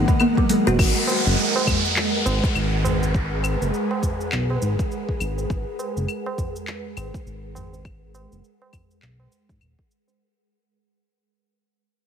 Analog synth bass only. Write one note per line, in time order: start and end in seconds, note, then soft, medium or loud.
0.67 0.77 D#1 loud
0.79 0.93 G#1 loud
1.26 1.36 F#1 medium
2.26 2.40 G#1 medium
2.56 3.56 G#1 medium
3.62 3.71 F#1 medium
4.32 4.57 B1 medium
4.62 4.76 G#1 medium
5.20 5.45 G#1 medium
5.50 5.64 G#1 medium
5.96 6.06 F#1 medium
6.97 7.11 G#1 medium
7.26 8.27 G#1 loud
8.32 8.41 F#1 medium
9.02 9.27 B1 medium
9.49 9.59 G#2 medium
9.61 9.75 D#1 loud